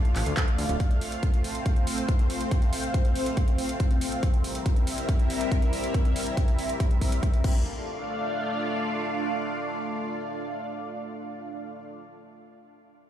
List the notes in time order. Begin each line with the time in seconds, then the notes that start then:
Already playing: A3 D4 F4 D5 F5
0.05 closed hi-hat
0.16 A1, clap, open hi-hat
0.26 D2, closed hi-hat
0.37 kick, clap, closed hi-hat
0.48 closed hi-hat
0.58 D2, open hi-hat
0.69 D1, closed hi-hat
0.80 C4 C5, kick, closed hi-hat
0.91 closed hi-hat
1.01 open hi-hat
1.12 closed hi-hat
1.23 kick, closed hi-hat
1.34 closed hi-hat
1.44 open hi-hat
1.55 closed hi-hat
1.66 kick, closed hi-hat
1.76 closed hi-hat
1.87 open hi-hat
1.98 closed hi-hat
2.08 kick, closed hi-hat
2.19 closed hi-hat
2.30 open hi-hat
2.41 closed hi-hat
2.51 kick, closed hi-hat
2.62 closed hi-hat
2.73 open hi-hat
2.83 closed hi-hat
2.94 kick, closed hi-hat
3.05 closed hi-hat
3.16 open hi-hat
3.26 closed hi-hat
3.37 kick, closed hi-hat
3.48 closed hi-hat
3.58 open hi-hat
3.69 closed hi-hat
3.80 kick, closed hi-hat
3.91 closed hi-hat
4.01 open hi-hat
4.12 closed hi-hat
4.23 G3 E4 A#4 E5, kick, closed hi-hat
4.34 closed hi-hat
4.44 open hi-hat
4.55 closed hi-hat
4.66 kick, closed hi-hat
4.76 closed hi-hat
4.87 open hi-hat
4.98 closed hi-hat
5.09 kick, closed hi-hat
5.19 closed hi-hat
5.30 open hi-hat
5.41 closed hi-hat
5.52 kick, closed hi-hat
5.62 closed hi-hat
5.73 open hi-hat
5.84 closed hi-hat
5.94 kick, closed hi-hat
6.05 closed hi-hat
6.16 open hi-hat
6.27 closed hi-hat
6.37 kick, closed hi-hat
6.48 closed hi-hat
6.59 open hi-hat
6.69 closed hi-hat
6.80 kick, closed hi-hat
6.91 closed hi-hat
7.01 kick, open hi-hat
7.12 closed hi-hat
7.23 kick, closed hi-hat
7.34 closed hi-hat
7.44 A3 D4 F4 D5 F5, kick, crash